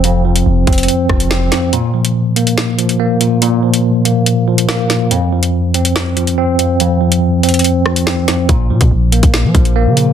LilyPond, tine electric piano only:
\new Staff \with { instrumentName = "Tine electric piano" } { \clef bass \time 4/4 \key f \phrygian \tempo 4 = 142 <f, f c'>8 f4 c'4 f8 c'8 f,8 | bes,8 f4 bes4 f8 bes8 bes,8 | bes,8 f4 bes4 f8 bes8 bes,8 | f,8 f4 c'4 f8 c'8 f,8 |
f,8 f4 c'4. c'8 f,8 | bes,8 f4 bes4 f8 bes8 bes,8 | }